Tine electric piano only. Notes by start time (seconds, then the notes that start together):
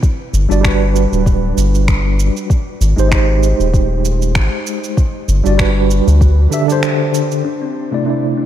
0.49 G3 D4 F#4 D5
0.61 G3 D4
0.65 F#4 B4
2.96 G#3 D#4 G4 C5
3.09 G#3 D#4
3.13 G4 C5
5.44 G3 D4 F#4 D5
5.57 G3 D4 F#4 B4
6.50 D3 D4 G4 E5
6.66 D3 D4
6.70 G4 C5
7.91 C3 A3 E4 D5
8.03 C3 A3
8.08 E4 D5